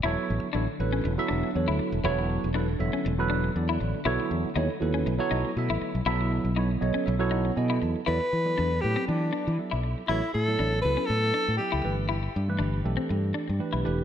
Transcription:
0.03 fretless electric bass E1, ambient pad D3 F#3 A3 D4, tine electric piano F#3 B3 E4 A4 C#5, clean electric guitar E4
0.30 fretless electric bass A1
0.43 muted fretless electric bass stroke
0.53 fretless electric bass A1, tine electric piano F#3 B3 E4 A4 C#5, clean electric guitar D4
0.68 tine electric piano A4 D5
0.79 fretless electric bass A1, tine electric piano F#3 B3 E4 A4 B4
0.93 clean electric guitar C#4
1.05 fretless electric bass E1
1.18 tine electric piano F#3 B3 E4 A4 E5
1.28 fretless electric bass E1, clean electric guitar D4
1.55 fretless electric bass E2, tine electric piano F#3 B3 E4 A4 C#5
1.68 fretless electric bass D2, clean electric guitar E4
1.79 muted fretless electric bass stroke
1.92 fretless electric bass E1
2.04 fretless electric bass E1, tine electric piano F#3 B3 E4 A4 C#5, clean electric guitar E4
2.44 fretless electric bass E1
2.54 tine electric piano F#3 B3 E4 A4 B4, clean electric guitar D4
2.68 tine electric piano A4 E5
2.79 fretless electric bass E1, tine electric piano F#3 B3 E4 A4 E5
2.93 clean electric guitar C#4, muted fretless electric bass stroke
3.06 fretless electric bass E1
3.19 tine electric piano F#3 B3 E4 A4 B4
3.30 clean electric guitar D4
3.55 fretless electric bass E2, tine electric piano F#3 B3 E4 A4 D5
3.69 clean electric guitar E4
3.81 fretless electric bass A1
4.04 fretless electric bass B1, ambient pad F#3 E4, tine electric piano F#3 B3 E4 A4 C#5, clean electric guitar E4
4.31 fretless electric bass E2
4.44 muted fretless electric bass stroke
4.56 fretless electric bass D#2, tine electric piano F#3 B3 E4 A4 C#5, clean electric guitar D#4
4.69 tine electric piano A4 D#5
4.80 fretless electric bass D#2, tine electric piano F#3 B3 E4 A4 B4
4.94 clean electric guitar C#4
5.07 fretless electric bass B1
5.18 tine electric piano F#3 B3 E4 A4 C#5
5.31 fretless electric bass B1, clean electric guitar D#4
5.57 fretless electric bass B2, tine electric piano F#3 B3 E4 A4 E5
5.70 fretless electric bass A1, clean electric guitar E4
5.82 muted fretless electric bass stroke
5.95 fretless electric bass B1
6.05 fretless electric bass B1, tine electric piano F#3 B3 E4 A4 E5, ambient pad B3, clean electric guitar E4
6.45 fretless electric bass B1
6.56 tine electric piano F#3 B3 E4 A4 C#5, clean electric guitar D#4
6.71 tine electric piano A4 E5
6.80 fretless electric bass B1, tine electric piano F#3 B3 E4 A4 C#5 D#5
6.94 clean electric guitar C#4, muted fretless electric bass stroke
7.06 fretless electric bass B1, tine electric piano E5
7.19 tine electric piano F#3 B3 E4 A4 C#5
7.31 clean electric guitar D#4, tine electric piano F#5
7.56 fretless electric bass B2, tine electric piano F#3 B3 E4 A4 D#5 G#5
7.70 clean electric guitar E4
7.82 fretless electric bass E2, tine electric piano A5
8.06 fretless electric bass E2, tine electric piano F#3 B3 E4 A4 D5, clean electric guitar E4, alto saxophone B4
8.33 fretless electric bass E3
8.45 tine electric piano F#3 B3 E4 A4 D5
8.58 fretless electric bass E2, clean electric guitar D4
8.81 fretless electric bass A2, tine electric piano F#3 B3 E4 A4 B4, alto saxophone G4
8.96 clean electric guitar C4
9.07 fretless electric bass E3, alto saxophone D4
9.33 clean electric guitar D4
9.47 fretless electric bass E3
9.58 tine electric piano F#3 B3 E4 A4 E5
9.71 fretless electric bass B1, clean electric guitar E4
10.08 fretless electric bass A1, tine electric piano F#3 B3 E4 A4 C#5, alto saxophone E4, clean electric guitar E4
10.22 tine electric piano A4 B4
10.34 fretless electric bass A2, alto saxophone A4
10.47 tine electric piano F#3 B3 E4 A4 C#5
10.59 fretless electric bass A1, clean electric guitar D4
10.82 fretless electric bass C#2, tine electric piano F#3 B3 E4 A4 B4, alto saxophone B4
10.97 clean electric guitar C#4
11.06 fretless electric bass A2, alto saxophone A4
11.34 clean electric guitar D4
11.48 fretless electric bass A2
11.57 tine electric piano F#3 B3 E4 A4 E5, alto saxophone G4
11.72 fretless electric bass C#2, clean electric guitar E4
11.83 fretless electric bass G1, tine electric piano E3 A3 D4 G4 B4
12.09 clean electric guitar E4
12.36 fretless electric bass G2
12.48 tine electric piano E3 A3 D4 G4 B4
12.59 fretless electric bass G1, clean electric guitar D4
12.84 fretless electric bass B1, tine electric piano E3 A3 D4 G4 A4
12.97 clean electric guitar C4
13.10 fretless electric bass G2
13.34 clean electric guitar D4
13.49 fretless electric bass G2
13.59 tine electric piano E3 A3 D4 G4 B4
13.73 fretless electric bass B1, clean electric guitar E4
13.84 fretless electric bass E1, tine electric piano E3 A3 D4 G4 B4

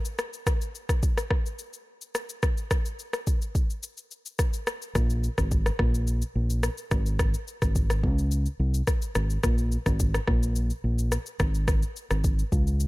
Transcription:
0.05 shaker
0.19 cross-stick, shaker
0.33 shaker
0.47 kick, cross-stick, shaker
0.61 shaker
0.75 shaker
0.89 kick, cross-stick, shaker
1.03 kick, shaker
1.18 cross-stick, shaker
1.30 kick, cross-stick
1.46 shaker
1.59 shaker
1.73 shaker
2.01 shaker
2.15 cross-stick, shaker
2.29 shaker
2.43 kick, cross-stick, shaker
2.58 shaker
2.71 kick, cross-stick, shaker
2.85 shaker
2.99 shaker
3.13 cross-stick, shaker
3.27 kick, shaker
3.42 shaker
3.55 kick, shaker
3.70 shaker
3.83 shaker
3.97 shaker
4.11 shaker
4.26 shaker
4.39 kick, cross-stick, shaker
4.53 shaker
4.67 cross-stick, shaker
4.82 shaker
4.95 fingered electric bass A#1, kick, cross-stick, shaker
5.10 shaker
5.24 shaker
5.38 fingered electric bass G#1, kick, cross-stick, shaker
5.51 kick, shaker
5.66 cross-stick, shaker
5.79 fingered electric bass A#1, kick, cross-stick
5.95 shaker
6.07 shaker
6.22 shaker
6.35 fingered electric bass A#1
6.50 shaker
6.63 cross-stick, shaker
6.78 shaker
6.91 fingered electric bass G#1, kick, cross-stick, shaker
7.06 shaker
7.19 kick, cross-stick, shaker
7.34 shaker
7.48 shaker
7.62 fingered electric bass G#1, kick, cross-stick, shaker
7.75 kick, shaker
7.90 cross-stick, shaker
8.03 fingered electric bass C#2, kick
8.19 shaker
8.31 shaker
8.46 shaker
8.59 fingered electric bass C2
8.74 shaker
8.87 kick, cross-stick, shaker
9.02 shaker
9.15 fingered electric bass G#1, cross-stick, shaker
9.30 shaker
9.43 fingered electric bass A#1, kick, cross-stick, shaker
9.58 shaker
9.72 shaker
9.86 fingered electric bass G#1, kick, cross-stick, shaker
10.00 kick, shaker
10.14 cross-stick, shaker
10.27 fingered electric bass A#1, kick, cross-stick
10.43 shaker
10.56 shaker
10.70 shaker
10.84 fingered electric bass A#1
10.99 shaker
11.12 cross-stick, shaker
11.26 shaker
11.40 fingered electric bass G#1, kick, cross-stick, shaker
11.55 shaker
11.68 kick, cross-stick, shaker
11.83 shaker
11.96 shaker
12.11 fingered electric bass G#1, cross-stick, shaker
12.24 kick, shaker
12.39 shaker
12.52 fingered electric bass C#2, kick, shaker
12.67 shaker
12.80 shaker

